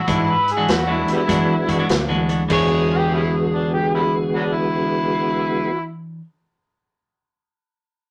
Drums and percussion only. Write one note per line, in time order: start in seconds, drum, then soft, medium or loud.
0.08 kick loud
0.08 closed hi-hat medium
0.48 closed hi-hat medium
0.68 snare loud
0.68 closed hi-hat medium
1.08 closed hi-hat medium
1.29 kick loud
1.29 closed hi-hat medium
1.69 kick medium
1.69 closed hi-hat medium
1.89 snare loud
1.89 closed hi-hat medium
2.29 closed hi-hat medium
2.50 kick medium
2.50 crash medium